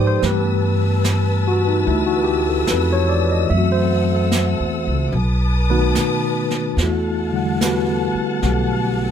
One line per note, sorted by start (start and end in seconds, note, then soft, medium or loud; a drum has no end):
0.00 0.21 G#2 medium
0.00 0.21 F3 soft
0.00 0.25 D#4 medium
0.00 0.25 G4 medium
0.00 0.20 A4 medium
0.00 0.22 A4 soft
0.00 0.24 B4 medium
0.00 0.07 C5 medium
0.00 0.25 D5 medium
0.00 0.21 G5 medium
0.00 0.21 D#6 medium
0.07 0.21 C5 medium
0.21 1.82 G2 medium
0.21 3.45 E3 medium
0.21 1.86 A3 soft
0.21 3.51 B3 medium
0.21 3.45 B4 medium
0.21 3.46 A5 medium
0.21 5.09 E6 medium
0.21 brush sweep soft
0.21 snare soft
0.26 2.23 G4 medium
0.26 0.57 B4 medium
1.04 snare soft
1.04 hi-hat pedal medium
1.48 1.66 F#4 medium
1.68 1.83 D#4 medium
1.86 2.64 D2 medium
1.86 3.48 A3 soft
1.86 1.90 E4 medium
1.86 brush sweep soft
1.91 3.52 E4 soft
2.07 2.36 F#4 medium
2.24 2.45 G4 medium
2.49 2.65 A4 medium
2.67 3.47 F2 medium
2.67 2.96 B4 medium
2.67 snare soft
2.67 hi-hat pedal soft
2.93 3.20 C#5 medium
3.09 3.29 D5 medium
3.32 3.47 D#5 medium
3.46 4.55 F#2 medium
3.46 5.12 E3 medium
3.46 5.13 A3 soft
3.46 5.11 A4 medium
3.46 3.76 E5 medium
3.46 5.11 F#5 medium
3.46 brush sweep soft
3.54 5.16 C4 soft
3.54 5.17 F#4 medium
3.72 3.90 C5 medium
4.32 snare soft
4.32 hi-hat pedal medium
4.60 4.85 E2 medium
4.87 5.12 C#2 medium
5.12 5.91 B1 medium
5.12 6.75 B4 medium
5.12 6.75 A5 medium
5.12 6.76 D#6 medium
5.12 brush sweep soft
5.70 6.79 D#3 medium
5.70 6.79 A3 soft
5.70 6.75 B3 medium
5.70 6.75 D#4 medium
5.70 6.79 F#4 medium
5.70 6.75 B4 medium
5.95 6.74 B2 medium
5.95 snare soft
5.95 hi-hat pedal soft
6.50 snare soft
6.76 8.10 E2 medium
6.76 9.11 A4 medium
6.76 9.11 F#5 medium
6.76 9.11 A5 medium
6.76 brush sweep soft
6.76 snare soft
6.83 7.33 A3 medium
6.83 7.59 E4 medium
6.83 7.58 F#4 soft
6.83 7.59 A4 medium
7.31 9.11 D3 soft
7.31 9.11 G3 soft
7.31 8.41 A3 soft
7.36 9.11 F#5 medium
7.61 8.40 B3 medium
7.61 8.40 G4 soft
7.61 8.40 B4 medium
7.61 snare soft
7.61 hi-hat pedal medium
7.66 8.41 F#4 medium
8.14 muted upright bass stroke soft
8.42 9.11 B1 medium
8.42 9.11 A3 soft
8.42 9.11 B3 soft
8.42 8.83 G4 soft
8.42 brush sweep soft
8.42 snare soft
8.84 9.09 G4 soft
9.05 9.11 A4 soft